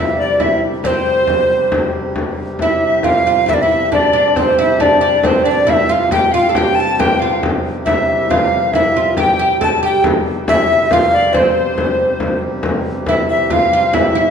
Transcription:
Already playing: C3 G3 E4 E5
0.17 D5, frame drum
0.39 E4 E5, frame drum
0.62 frame drum
0.83 C4 C5 D5, frame drum
1.27 frame drum
1.72 frame drum
1.94 frame drum
2.16 C3 G3, frame drum
2.59 E4 E5, frame drum
2.81 E5, frame drum
3.03 F4 F5 G5, frame drum
3.10 F5
3.27 F4
3.46 E4 F4 E5, frame drum
3.54 D5
3.62 E4 E5
3.92 D4 D5, frame drum
4.13 D4, frame drum
4.36 C4 C5, frame drum
4.59 E4 E5
4.80 D4 D5, frame drum
5.01 D4 D5
5.23 C4 C5, frame drum
5.44 D4 D5, frame drum
5.49 D5
5.67 E4 E5 F5, frame drum
5.73 E5
5.88 F4 F5
6.11 G4 G5, frame drum
6.32 F4 F5, frame drum
6.49 A4
6.55 G4 G5, frame drum
6.75 A5, frame drum
6.80 A5
6.98 G4 G5, frame drum
7.19 F4 F5
7.43 C3 G3, frame drum
7.85 E4 E5, frame drum
8.08 E5 F5, frame drum
8.30 F4 F5, frame drum
8.73 E4 E5, frame drum
8.97 F4
9.17 G4 G5, frame drum
9.39 G4, frame drum
9.61 A4 A5, frame drum
9.83 G4 G5
10.04 frame drum
10.48 E4 E5, frame drum
10.70 frame drum
10.91 F4 F5, frame drum
11.13 D5
11.33 C4 C5 D5, frame drum
11.39 C5
11.78 frame drum
12.20 frame drum
12.42 frame drum
12.63 C3 G3, frame drum
13.06 E4 E5, frame drum
13.28 E5, frame drum
13.50 F4 F5, frame drum
13.73 F4
13.93 E4 E5, frame drum
14.02 F5
14.07 E5
14.15 E4

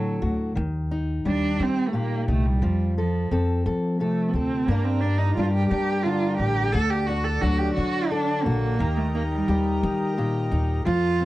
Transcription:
Already playing: A2 D3 F#3 F#4 A4
0.22 D2 F#4
0.55 D#2 D#3
0.91 D#4
1.25 D#2 G3 D4 G4
1.60 D#3 C4 D#4
1.88 A3
1.93 A#2 A#3 G4
2.28 C2 A3 D#4
2.46 G3
2.62 F2 F3
2.97 F3 A4
3.31 F2 C4 A4
3.66 F3 A4
4.00 C3 A3 A4
4.28 B3
4.33 D2 C4 A4
4.67 G2 G3 A#3 D4 G4 A#4 D5 A#5
4.71 A#4
4.84 C4
5.01 D4
5.18 D#4
5.36 G2 G3 D4 F4
5.54 G4
5.70 G3 D4 G4
6.03 D3 D4 F4
6.38 A1 D4 G4
6.72 D2 D3 F#4 A4 D5 A5
6.90 G4
7.07 D4 F#4
7.24 A4
7.42 D2 F#3 D4 F#4
7.58 G4
7.75 D3 D4 F#4
8.10 D4 A4
8.44 A#1 A#3 F#4
8.79 D#2 D#3 G4 A#4 D#5 A#5
8.97 A3
9.14 A#3 D#4
9.31 G3
9.48 D#2 G3 G4
9.83 D#3 D#4
10.18 A#2 G4
10.51 D#2 D#4
10.85 F2 F3 F4 A4 C5 A5
11.20 C4

